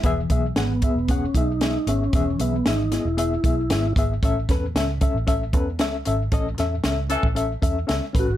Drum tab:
HH |x-x-x-x-x-x-x-x-|x-x-x-x-x-x-x-x-|x-x-x-x-x-x-x-x-|x-x-x-x-x-x-x-x-|
SD |----o-------o---|----o-o-----o---|--o-o-------o---|--o-o-------o---|
BD |o-o---o-o-o-----|o---------o---o-|o-o---o-o-o-----|o------o--o---o-|